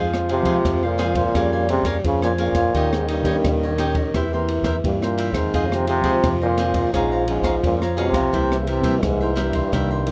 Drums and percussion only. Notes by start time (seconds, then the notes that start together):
0.14 cross-stick
0.29 ride
0.45 kick, ride
0.65 kick, cross-stick, ride
0.99 cross-stick, ride
1.15 kick, ride
1.35 kick, cross-stick, ride
1.69 ride
1.85 kick, cross-stick, ride
2.04 kick, ride
2.22 cross-stick
2.38 ride
2.55 kick, cross-stick, ride
2.74 kick, ride
2.93 cross-stick
3.08 ride
3.25 kick, ride
3.44 kick, cross-stick, ride
3.78 cross-stick, ride
3.95 kick, ride
4.14 kick, cross-stick, ride
4.48 ride
4.64 kick, cross-stick, ride
4.84 kick, ride
5.03 cross-stick
5.18 ride
5.34 kick, cross-stick, ride
5.54 kick, ride
5.72 cross-stick
5.87 ride
6.04 kick, ride
6.24 kick, cross-stick, ride
6.58 cross-stick, ride
6.74 kick, ride
6.94 kick, cross-stick, ride
7.28 ride
7.44 kick, cross-stick, ride
7.64 kick, ride
7.82 cross-stick
7.98 ride
8.14 kick, cross-stick, ride
8.33 kick, ride
8.52 cross-stick
8.67 ride
8.83 kick, ride
9.03 kick, cross-stick, ride
9.37 cross-stick, ride
9.53 kick, ride
9.73 kick, cross-stick, ride
10.07 ride